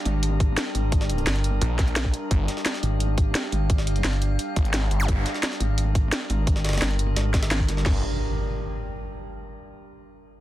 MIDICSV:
0, 0, Header, 1, 7, 480
1, 0, Start_track
1, 0, Tempo, 346821
1, 1276, Time_signature, 4, 2, 24, 8
1, 14399, End_track
2, 0, Start_track
2, 0, Title_t, "Synth drone"
2, 0, Program_c, 0, 95
2, 0, Note_on_c, 0, 55, 80
2, 0, Note_on_c, 0, 62, 77
2, 0, Note_on_c, 0, 67, 77
2, 0, Note_on_c, 0, 70, 87
2, 3182, Note_off_c, 0, 70, 0
2, 3197, Note_on_c, 0, 77, 89
2, 7022, Note_off_c, 0, 77, 0
2, 7036, Note_on_c, 0, 70, 91
2, 10821, Note_off_c, 0, 55, 0
2, 10821, Note_off_c, 0, 62, 0
2, 10821, Note_off_c, 0, 67, 0
2, 10862, Note_off_c, 0, 70, 0
2, 14399, End_track
3, 0, Start_track
3, 0, Title_t, "Wobble bass"
3, 0, Program_c, 1, 39
3, 77, Note_on_c, 1, 32, 99
3, 777, Note_off_c, 1, 32, 0
3, 1036, Note_on_c, 1, 32, 94
3, 1737, Note_off_c, 1, 32, 0
3, 1756, Note_on_c, 1, 31, 95
3, 2217, Note_off_c, 1, 31, 0
3, 3917, Note_on_c, 1, 32, 93
3, 4617, Note_off_c, 1, 32, 0
3, 4877, Note_on_c, 1, 32, 96
3, 5578, Note_off_c, 1, 32, 0
3, 5597, Note_on_c, 1, 31, 98
3, 6057, Note_off_c, 1, 31, 0
3, 7756, Note_on_c, 1, 32, 93
3, 8457, Note_off_c, 1, 32, 0
3, 8716, Note_on_c, 1, 32, 99
3, 9417, Note_off_c, 1, 32, 0
3, 9436, Note_on_c, 1, 31, 97
3, 9897, Note_off_c, 1, 31, 0
3, 9917, Note_on_c, 1, 32, 94
3, 10617, Note_off_c, 1, 32, 0
3, 10636, Note_on_c, 1, 31, 100
3, 10857, Note_off_c, 1, 31, 0
3, 14399, End_track
4, 0, Start_track
4, 0, Title_t, "Detuned saw bass"
4, 0, Program_c, 2, 39
4, 2237, Note_on_c, 2, 34, 95
4, 2937, Note_off_c, 2, 34, 0
4, 3197, Note_on_c, 2, 31, 104
4, 3417, Note_off_c, 2, 31, 0
4, 6318, Note_on_c, 2, 32, 97
4, 6778, Note_off_c, 2, 32, 0
4, 6797, Note_on_c, 2, 31, 95
4, 7017, Note_off_c, 2, 31, 0
4, 7037, Note_on_c, 2, 31, 98
4, 7258, Note_off_c, 2, 31, 0
4, 10877, Note_on_c, 2, 31, 96
4, 11100, Note_off_c, 2, 31, 0
4, 14399, End_track
5, 0, Start_track
5, 0, Title_t, "Impact"
5, 0, Program_c, 3, 103
5, 10877, Note_on_c, 3, 60, 68
5, 12797, Note_off_c, 3, 60, 0
5, 14399, End_track
6, 0, Start_track
6, 0, Title_t, "Zap"
6, 0, Program_c, 4, 103
6, 6917, Note_on_c, 4, 60, 64
6, 7037, Note_off_c, 4, 60, 0
6, 14399, End_track
7, 0, Start_track
7, 0, Title_t, "Drums"
7, 76, Note_on_c, 9, 42, 66
7, 214, Note_off_c, 9, 42, 0
7, 316, Note_on_c, 9, 42, 91
7, 454, Note_off_c, 9, 42, 0
7, 556, Note_on_c, 9, 42, 71
7, 557, Note_on_c, 9, 36, 115
7, 694, Note_off_c, 9, 42, 0
7, 695, Note_off_c, 9, 36, 0
7, 796, Note_on_c, 9, 38, 125
7, 796, Note_on_c, 9, 42, 94
7, 935, Note_off_c, 9, 38, 0
7, 935, Note_off_c, 9, 42, 0
7, 1036, Note_on_c, 9, 42, 67
7, 1175, Note_off_c, 9, 42, 0
7, 1275, Note_on_c, 9, 42, 88
7, 1276, Note_off_c, 9, 42, 0
7, 1276, Note_on_c, 9, 36, 122
7, 1276, Note_on_c, 9, 42, 91
7, 1397, Note_on_c, 9, 38, 60
7, 1415, Note_off_c, 9, 36, 0
7, 1415, Note_off_c, 9, 42, 0
7, 1516, Note_on_c, 9, 42, 71
7, 1535, Note_off_c, 9, 38, 0
7, 1636, Note_off_c, 9, 42, 0
7, 1636, Note_on_c, 9, 42, 47
7, 1756, Note_off_c, 9, 42, 0
7, 1756, Note_on_c, 9, 38, 120
7, 1756, Note_on_c, 9, 42, 90
7, 1756, Note_on_c, 9, 46, 78
7, 1877, Note_off_c, 9, 42, 0
7, 1877, Note_on_c, 9, 42, 45
7, 1895, Note_off_c, 9, 38, 0
7, 1895, Note_off_c, 9, 46, 0
7, 1996, Note_off_c, 9, 42, 0
7, 1996, Note_on_c, 9, 42, 65
7, 1997, Note_off_c, 9, 42, 0
7, 1997, Note_on_c, 9, 42, 73
7, 2135, Note_off_c, 9, 42, 0
7, 2235, Note_on_c, 9, 42, 96
7, 2236, Note_off_c, 9, 42, 0
7, 2236, Note_on_c, 9, 42, 92
7, 2375, Note_off_c, 9, 42, 0
7, 2475, Note_on_c, 9, 38, 39
7, 2475, Note_on_c, 9, 42, 62
7, 2476, Note_off_c, 9, 42, 0
7, 2476, Note_on_c, 9, 42, 73
7, 2477, Note_on_c, 9, 36, 110
7, 2597, Note_off_c, 9, 42, 0
7, 2597, Note_on_c, 9, 42, 43
7, 2614, Note_off_c, 9, 38, 0
7, 2615, Note_off_c, 9, 36, 0
7, 2716, Note_off_c, 9, 42, 0
7, 2716, Note_on_c, 9, 38, 127
7, 2716, Note_on_c, 9, 42, 94
7, 2717, Note_off_c, 9, 38, 0
7, 2717, Note_off_c, 9, 42, 0
7, 2717, Note_on_c, 9, 38, 126
7, 2717, Note_on_c, 9, 42, 90
7, 2837, Note_on_c, 9, 36, 60
7, 2855, Note_off_c, 9, 38, 0
7, 2855, Note_off_c, 9, 42, 0
7, 2956, Note_on_c, 9, 42, 62
7, 2957, Note_off_c, 9, 42, 0
7, 2957, Note_on_c, 9, 42, 69
7, 2975, Note_off_c, 9, 36, 0
7, 3095, Note_off_c, 9, 42, 0
7, 3196, Note_on_c, 9, 42, 86
7, 3197, Note_off_c, 9, 42, 0
7, 3197, Note_on_c, 9, 36, 126
7, 3197, Note_on_c, 9, 42, 96
7, 3335, Note_off_c, 9, 36, 0
7, 3335, Note_off_c, 9, 42, 0
7, 3436, Note_on_c, 9, 42, 62
7, 3437, Note_off_c, 9, 42, 0
7, 3437, Note_on_c, 9, 38, 39
7, 3437, Note_on_c, 9, 42, 68
7, 3557, Note_off_c, 9, 38, 0
7, 3557, Note_on_c, 9, 38, 45
7, 3575, Note_off_c, 9, 42, 0
7, 3676, Note_off_c, 9, 38, 0
7, 3676, Note_on_c, 9, 38, 126
7, 3676, Note_on_c, 9, 42, 92
7, 3677, Note_off_c, 9, 38, 0
7, 3677, Note_off_c, 9, 42, 0
7, 3677, Note_on_c, 9, 38, 113
7, 3677, Note_on_c, 9, 42, 91
7, 3796, Note_off_c, 9, 38, 0
7, 3796, Note_on_c, 9, 38, 59
7, 3815, Note_off_c, 9, 42, 0
7, 3917, Note_on_c, 9, 42, 66
7, 3935, Note_off_c, 9, 38, 0
7, 4055, Note_off_c, 9, 42, 0
7, 4157, Note_on_c, 9, 42, 93
7, 4296, Note_off_c, 9, 42, 0
7, 4397, Note_on_c, 9, 36, 110
7, 4397, Note_on_c, 9, 42, 64
7, 4535, Note_off_c, 9, 42, 0
7, 4536, Note_off_c, 9, 36, 0
7, 4637, Note_on_c, 9, 38, 127
7, 4637, Note_on_c, 9, 42, 98
7, 4775, Note_off_c, 9, 38, 0
7, 4775, Note_off_c, 9, 42, 0
7, 4877, Note_on_c, 9, 42, 66
7, 5015, Note_off_c, 9, 42, 0
7, 5117, Note_on_c, 9, 36, 116
7, 5117, Note_on_c, 9, 42, 88
7, 5237, Note_on_c, 9, 38, 57
7, 5256, Note_off_c, 9, 36, 0
7, 5256, Note_off_c, 9, 42, 0
7, 5357, Note_on_c, 9, 42, 68
7, 5375, Note_off_c, 9, 38, 0
7, 5477, Note_off_c, 9, 42, 0
7, 5477, Note_on_c, 9, 42, 47
7, 5596, Note_on_c, 9, 38, 118
7, 5596, Note_on_c, 9, 46, 86
7, 5597, Note_off_c, 9, 38, 0
7, 5597, Note_off_c, 9, 42, 0
7, 5597, Note_on_c, 9, 38, 109
7, 5597, Note_on_c, 9, 42, 88
7, 5717, Note_off_c, 9, 42, 0
7, 5717, Note_on_c, 9, 42, 45
7, 5735, Note_off_c, 9, 38, 0
7, 5735, Note_off_c, 9, 46, 0
7, 5837, Note_off_c, 9, 42, 0
7, 5837, Note_on_c, 9, 42, 65
7, 5975, Note_off_c, 9, 42, 0
7, 6077, Note_on_c, 9, 42, 94
7, 6215, Note_off_c, 9, 42, 0
7, 6316, Note_on_c, 9, 42, 62
7, 6317, Note_off_c, 9, 42, 0
7, 6317, Note_on_c, 9, 36, 106
7, 6317, Note_on_c, 9, 42, 72
7, 6437, Note_off_c, 9, 42, 0
7, 6437, Note_on_c, 9, 42, 42
7, 6456, Note_off_c, 9, 36, 0
7, 6557, Note_off_c, 9, 42, 0
7, 6557, Note_on_c, 9, 38, 123
7, 6557, Note_on_c, 9, 42, 94
7, 6695, Note_off_c, 9, 38, 0
7, 6695, Note_off_c, 9, 42, 0
7, 6797, Note_on_c, 9, 42, 63
7, 6935, Note_off_c, 9, 42, 0
7, 7036, Note_on_c, 9, 42, 90
7, 7037, Note_off_c, 9, 42, 0
7, 7037, Note_on_c, 9, 36, 119
7, 7037, Note_on_c, 9, 42, 88
7, 7175, Note_off_c, 9, 42, 0
7, 7176, Note_off_c, 9, 36, 0
7, 7277, Note_on_c, 9, 38, 38
7, 7277, Note_on_c, 9, 42, 66
7, 7397, Note_off_c, 9, 38, 0
7, 7397, Note_on_c, 9, 38, 42
7, 7415, Note_off_c, 9, 42, 0
7, 7517, Note_off_c, 9, 38, 0
7, 7517, Note_on_c, 9, 38, 107
7, 7517, Note_on_c, 9, 42, 88
7, 7637, Note_off_c, 9, 38, 0
7, 7637, Note_on_c, 9, 38, 57
7, 7656, Note_off_c, 9, 42, 0
7, 7757, Note_on_c, 9, 42, 65
7, 7775, Note_off_c, 9, 38, 0
7, 7895, Note_off_c, 9, 42, 0
7, 7997, Note_on_c, 9, 42, 92
7, 8135, Note_off_c, 9, 42, 0
7, 8237, Note_on_c, 9, 36, 106
7, 8237, Note_on_c, 9, 42, 75
7, 8375, Note_off_c, 9, 36, 0
7, 8375, Note_off_c, 9, 42, 0
7, 8476, Note_on_c, 9, 38, 123
7, 8476, Note_on_c, 9, 42, 96
7, 8477, Note_off_c, 9, 38, 0
7, 8477, Note_off_c, 9, 42, 0
7, 8477, Note_on_c, 9, 38, 116
7, 8477, Note_on_c, 9, 42, 93
7, 8615, Note_off_c, 9, 38, 0
7, 8615, Note_off_c, 9, 42, 0
7, 8717, Note_on_c, 9, 42, 65
7, 8855, Note_off_c, 9, 42, 0
7, 8956, Note_on_c, 9, 42, 93
7, 8957, Note_off_c, 9, 42, 0
7, 8957, Note_on_c, 9, 36, 122
7, 8957, Note_on_c, 9, 42, 88
7, 9077, Note_on_c, 9, 38, 57
7, 9095, Note_off_c, 9, 36, 0
7, 9096, Note_off_c, 9, 42, 0
7, 9197, Note_off_c, 9, 38, 0
7, 9197, Note_on_c, 9, 38, 91
7, 9197, Note_on_c, 9, 42, 70
7, 9257, Note_off_c, 9, 38, 0
7, 9257, Note_off_c, 9, 42, 0
7, 9257, Note_on_c, 9, 38, 92
7, 9257, Note_on_c, 9, 42, 69
7, 9317, Note_off_c, 9, 38, 0
7, 9317, Note_off_c, 9, 42, 0
7, 9317, Note_on_c, 9, 38, 95
7, 9317, Note_on_c, 9, 42, 70
7, 9377, Note_off_c, 9, 38, 0
7, 9377, Note_off_c, 9, 42, 0
7, 9377, Note_on_c, 9, 38, 101
7, 9377, Note_on_c, 9, 42, 77
7, 9436, Note_off_c, 9, 38, 0
7, 9436, Note_off_c, 9, 42, 0
7, 9436, Note_on_c, 9, 38, 113
7, 9436, Note_on_c, 9, 42, 95
7, 9437, Note_off_c, 9, 38, 0
7, 9437, Note_on_c, 9, 38, 122
7, 9437, Note_on_c, 9, 46, 80
7, 9558, Note_off_c, 9, 42, 0
7, 9558, Note_on_c, 9, 42, 45
7, 9576, Note_off_c, 9, 38, 0
7, 9576, Note_off_c, 9, 46, 0
7, 9676, Note_off_c, 9, 42, 0
7, 9676, Note_on_c, 9, 42, 70
7, 9677, Note_off_c, 9, 42, 0
7, 9677, Note_on_c, 9, 42, 73
7, 9816, Note_off_c, 9, 42, 0
7, 9916, Note_on_c, 9, 42, 100
7, 9918, Note_off_c, 9, 42, 0
7, 9918, Note_on_c, 9, 38, 109
7, 9918, Note_on_c, 9, 42, 88
7, 10056, Note_off_c, 9, 38, 0
7, 10056, Note_off_c, 9, 42, 0
7, 10157, Note_on_c, 9, 36, 100
7, 10157, Note_on_c, 9, 38, 105
7, 10157, Note_on_c, 9, 42, 84
7, 10277, Note_off_c, 9, 38, 0
7, 10277, Note_off_c, 9, 42, 0
7, 10277, Note_on_c, 9, 38, 105
7, 10277, Note_on_c, 9, 42, 80
7, 10295, Note_off_c, 9, 36, 0
7, 10397, Note_off_c, 9, 38, 0
7, 10397, Note_off_c, 9, 42, 0
7, 10397, Note_on_c, 9, 38, 108
7, 10397, Note_on_c, 9, 42, 81
7, 10517, Note_on_c, 9, 36, 57
7, 10536, Note_off_c, 9, 38, 0
7, 10536, Note_off_c, 9, 42, 0
7, 10636, Note_on_c, 9, 42, 64
7, 10637, Note_off_c, 9, 42, 0
7, 10637, Note_on_c, 9, 38, 33
7, 10637, Note_on_c, 9, 42, 59
7, 10655, Note_off_c, 9, 36, 0
7, 10757, Note_off_c, 9, 38, 0
7, 10757, Note_on_c, 9, 38, 37
7, 10775, Note_off_c, 9, 42, 0
7, 10877, Note_off_c, 9, 38, 0
7, 10877, Note_on_c, 9, 36, 111
7, 10877, Note_on_c, 9, 38, 104
7, 10877, Note_on_c, 9, 49, 94
7, 11015, Note_off_c, 9, 36, 0
7, 11015, Note_off_c, 9, 38, 0
7, 11015, Note_off_c, 9, 49, 0
7, 14399, End_track
0, 0, End_of_file